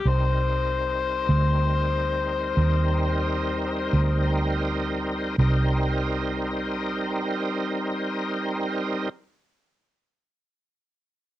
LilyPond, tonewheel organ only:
\new Staff \with { instrumentName = "Tonewheel organ" } { \time 12/8 \key c \minor \tempo 4. = 40 <g c' ees' bes'>1. | <g c' ees' bes'>1. | }